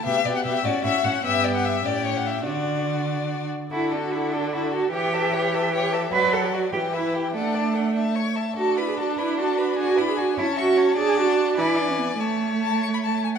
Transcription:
X:1
M:6/8
L:1/16
Q:3/8=99
K:D
V:1 name="Violin"
e2 d f e2 d2 e2 f2 | e2 d f e2 d2 c f e2 | d8- d2 z2 | A2 F2 A2 F2 A2 F2 |
c2 e2 c2 e2 c2 e2 | d2 f2 d2 g2 e2 g2 | f2 a2 f2 a2 c'2 a2 | [K:A] a2 b2 a2 b2 a2 b2 |
g2 b2 g2 a2 c'2 a2 | a6 g6 | a4 a2 c' b a2 g f |]
V:2 name="Violin"
G2 G2 G2 F2 F2 F2 | G6 G6 | F8- F2 z2 | F2 A2 F2 A2 F2 A2 |
G2 A2 G2 A2 G2 A2 | F2 A2 F2 G2 B2 G2 | A2 d2 A2 e2 c2 e2 | [K:A] A2 B2 A2 B2 A2 B2 |
G2 B2 G2 c2 e2 c2 | d6 d6 | c8- c2 z2 |]
V:3 name="Cello"
B,,2 B,,2 B,,2 A,,2 A,,2 A,,2 | G,,6 A,,6 | D,8- D,2 z2 | E2 D F E2 D2 E2 F2 |
G8- G2 z2 | B2 A G F2 G2 E4 | D6 z6 | [K:A] F2 E G F2 E2 F4 |
F2 E G F2 E2 F4 | G2 F4 E2 D C B,2 | A,8- A,2 z2 |]
V:4 name="Viola"
B,2 B,2 B,2 C2 C2 C2 | B,6 C6 | D8- D2 z2 | D,12 |
E,12 | F,6 E,6 | A,8- A,2 z2 | [K:A] D12- |
D6 C6 | D6 E,6 | A,8- A,2 z2 |]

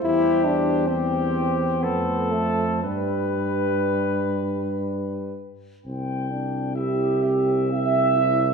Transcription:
X:1
M:3/4
L:1/8
Q:1/4=62
K:C
V:1 name="French horn section"
c6 | B4- B z | z2 G2 e2 |]
V:2 name="Flugelhorn"
G2 G2 A2 | B4- B z | g2 e e3 |]
V:3 name="Euphonium"
E D C2 B, A, | G,4- G, z | C D E C G E |]
V:4 name="Euphonium" clef=bass
G,3 z A,2 | G,4- G, z | C6 |]
V:5 name="Tuba" clef=bass
E,,4 F,,2 | G,,4- G,, z | C,,6 |]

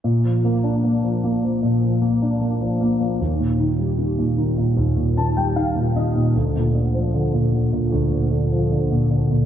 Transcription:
X:1
M:4/4
L:1/16
Q:1/4=76
K:Bb
V:1 name="Grand piano"
z16 | z8 z2 a g f2 e2 | z16 |]
V:2 name="Grand piano" clef=bass
B,, F, B, D B, F, B, F, B,, F, B, D B, F, B, F, | E,, B,, E, G, E, B,, E, B,, E,, B,, E, G, E, B,, E, B,, | D,, B,, D, F, D, B,, D, B,, D,, B,, D, F, D, B,, D, B,, |]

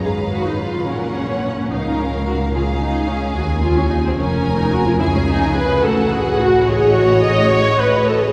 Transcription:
X:1
M:6/8
L:1/16
Q:3/8=72
K:C#mix
V:1 name="Violin section"
e6 f6 | e6 e6 | g6 g6 | [K:Alyd] g6 f6 |
d12 |]
V:2 name="Violin section"
B6 A2 c2 c2 | A6 G6- | G6 A6 | [K:Alyd] G6 F6 |
c12 |]
V:3 name="Viola section"
G2 F D E2 C6 | D2 C2 F2 E2 D2 C2 | F2 E C D ^B, C3 D F E | [K:Alyd] E C D2 B2 A2 G2 F2 |
G2 F2 d2 c2 B2 A G |]
V:4 name="Cello section" clef=bass
G,,6 A,,6 | C,,12 | D,,6 E,,6 | [K:Alyd] C,6 A,,6- |
A,,12 |]
V:5 name="Double bass section" clef=bass
G,,,6 A,,,6 | C,,12 | D,,6 E,,,6 | [K:Alyd] C,,6 A,,,6- |
A,,,12 |]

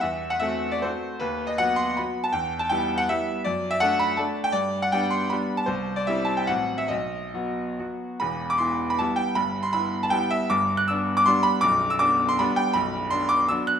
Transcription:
X:1
M:3/4
L:1/16
Q:1/4=158
K:Em
V:1 name="Grand piano"
e3 f e3 d c4 | B3 ^d f2 c'2 b3 a | g3 a g3 f e4 | d3 e f2 b2 a3 g |
d3 f g2 c'2 b3 a | c3 d e2 a g f3 e | ^d8 z4 | b3 d' c'3 b a2 g2 |
b3 c' b3 a g2 e2 | d'3 f' e'3 d' c'2 b2 | d'3 e' d'3 c' b2 g2 | [K:Bphr] b4 c'2 d'2 e'2 f'2 |]
V:2 name="Grand piano"
E,,4 [A,CF]4 [A,CF]4 | ^D,,4 [F,B,F]4 [F,B,F]4 | E,,4 [G,B,E]4 [G,B,E]4 | F,,4 [A,D]4 [A,D]4 |
G,,4 [G,B,D]4 [G,B,D]4 | C,,4 [G,CE]4 [A,,,F,CF]4 | B,,,4 [F,B,F]4 [F,B,F]4 | [E,,,E,,]4 [B,E]4 [G,B,E]4 |
[G,,,G,,]4 [B,E]4 [G,B,E]4 | [G,,,G,,]4 [B,D]4 [G,B,D]4 | [B,,,,B,,,]4 [B,D]4 [G,B,D]4 | [K:Bphr] [B,,,,B,,,]4 [B,D]4 [F,B,D]4 |]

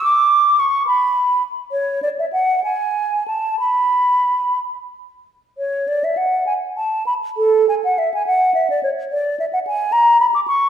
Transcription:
X:1
M:6/8
L:1/16
Q:3/8=68
K:Bdor
V:1 name="Flute"
d'4 c'2 b4 z2 | c2 d e f2 g4 a2 | b6 z6 | c2 d e f2 g2 a2 b2 |
A2 g f e g f2 e d c2 | d2 e f g2 _b2 =b d' c'2 |]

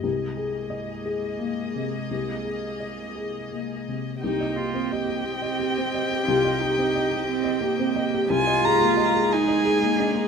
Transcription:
X:1
M:6/8
L:1/16
Q:3/8=59
K:Cm
V:1 name="Violin"
z12 | z12 | g12- | g12 |
a2 b2 b2 a6 |]
V:2 name="Felt piano"
C,,2 A2 e2 A2 B,2 C,2 | C,,2 A2 e2 A2 B,2 C,2 | C,, e G C e G2 e G C e G | C,, e G C e G2 e G C e G |
C,, e A B, e A2 e A B, e A |]
V:3 name="Viola"
z12 | z12 | E2 F2 G8- | G12- |
G6 A6 |]
V:4 name="String section"
[B,Ae]12- | [B,Ae]12 | [CGe]12- | [CGe]12 |
[A,B,E]12 |]
V:5 name="Cello"
A,12- | A,8- A,2 z2 | B,6 C6 | F2 E4 C2 B,4 |
F6 E4 D B, |]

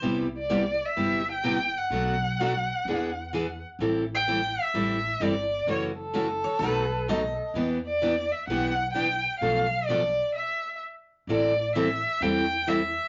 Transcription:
X:1
M:4/4
L:1/16
Q:"Swing" 1/4=128
K:Em
V:1 name="Violin"
z2 d4 e4 g4 f2- | f12- f2 z2 | z2 g4 e6 d4 | ^c2 A12 z2 |
z2 d4 e2 f4 g4 | =f4 d4 e4 z4 | [K:Am] d4 e4 g4 e4 |]
V:2 name="Steel-string acoustic guitar"
c z12 z3 | z16 | z16 | z6 ^c2 B4 ^d4- |
^d z12 z3 | z16 | [K:Am] z16 |]
V:3 name="Steel-string acoustic guitar"
[C,G,B,EG]2 z2 [C,G,B,EG]2 z2 [C,G,B,EG]2 z2 [C,G,B,EG]2 z2 | [B,,F,A,DF]2 z2 [B,,F,A,DF]2 z2 [E,B,D^G]2 z2 [E,B,DG]2 z2 | [E,G,CEA]2 z2 [E,G,CEA]2 z2 [E,G,CEA]2 z2 [E,G,CEA]2 z2 | [^C,E,A,^CF]2 z2 [C,E,A,CF]2 z2 [B,,F,A,^DF]2 z2 [B,,F,A,DF]2 z2 |
[E,B,DG]2 z2 [E,B,DG]2 z2 [E,B,DG]2 z2 [E,B,DG]2 z2 | [B,,=F,A,DA]2 z2 [B,,F,A,DA]2 z8 z2 | [K:Am] [E,G,CEA]2 z2 [E,G,CEA]2 z2 [E,G,CEA]2 z2 [E,G,CEA]2 z2 |]
V:4 name="Upright bass" clef=bass
C,,8 G,,,8 | B,,,8 E,,8 | A,,,8 A,,,4 G,,,4 | F,,,8 B,,,8 |
E,,8 B,,,8 | B,,,8 z8 | [K:Am] A,,,8 E,,8 |]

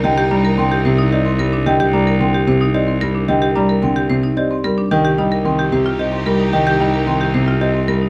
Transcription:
X:1
M:3/4
L:1/16
Q:1/4=111
K:Cm
V:1 name="Celesta"
e z b z4 z e z3 | e z b z4 z e z3 | e z b z4 z e z3 | e z g z4 z e z3 |
e z g z4 z e z3 |]
V:2 name="Marimba"
g z d z g z G z d z B z | g z d z g z G z d z B z | g z d z g z G z d z B z | g z e z g z G z e z B z |
g z e z g z G z e z B z |]
V:3 name="Marimba"
G G D B C G c E G C B D | G G D B C G c E G C B D | G G D B C G c E G C B D | G G E B C G c F G C B E |
G G E B C G c F G C B E |]
V:4 name="String section"
[EB]8- [EB]3 z | z12 | z12 | [EG]12- |
[EG]8- [EG]3 z |]
V:5 name="Grand piano" clef=bass
D, z G, z D, z C, z C z G, z | D, z G, z D, z C, z C z G, z | D, z G, z D, z C, z C z G, z | E, z G, z E, z C, z C z G, z |
E, z G, z E, z C, z C z G, z |]
V:6 name="Cello" clef=bass
C,,12- | C,,12- | C,,12 | C,,12- |
C,,12 |]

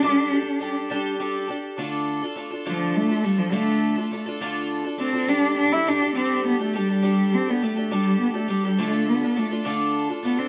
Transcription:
X:1
M:6/8
L:1/16
Q:3/8=69
K:Ddor
V:1 name="Upright piano"
d'8 z4 | z12 | z12 | z12 |
z12 | z12 |]
V:2 name="Twelve-string acoustic guitar"
[G,DGA]2 [DGA]2 [G,DGA]2 [G,DGA]2 [G,DGA]2 [DGA]2 | [D,A,DFA]3 [DFA] [A,DFA] [DFA] [D,A,DFA]3 [DFA] [A,DFA] [DFA] | [D,A,DFA]3 [DFA] [A,DFA] [DFA] [D,A,DFA]3 [DFA] [A,DFA] [DFA] | [G,DGA]3 [DGA] [G,DGA] [DGA] [G,DGA]3 [DGA] [G,DGA] [DGA] |
[G,DGA]3 [DGA] [G,DGA] [DGA] [G,DGA]3 [DGA] [G,DGA] [DGA] | [D,A,DFA]3 [DFA] [A,DFA] [DFA] [D,A,DFA]3 [DFA] [A,DFA] [DFA] |]
V:3 name="Cello"
D8- D2 z2 | z6 F,2 A,2 G, F, | A,4 z6 C2 | D2 D E D2 C2 B, A, G,2- |
G,2 C B, A,2 G,2 B, A, G,2 | A,2 B,2 A,2 z4 B, C |]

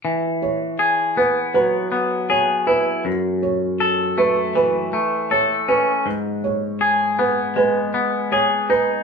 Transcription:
X:1
M:4/4
L:1/8
Q:1/4=80
K:E
V:1 name="Felt piano"
z c2 B B2 c B | z c2 B B2 c B | z c2 B B2 c B |]
V:2 name="Clean electric guitar"
E,2 G B, F, B, G E | F,,2 A A, E, A, A C | G,,2 G B, G, B, G D |]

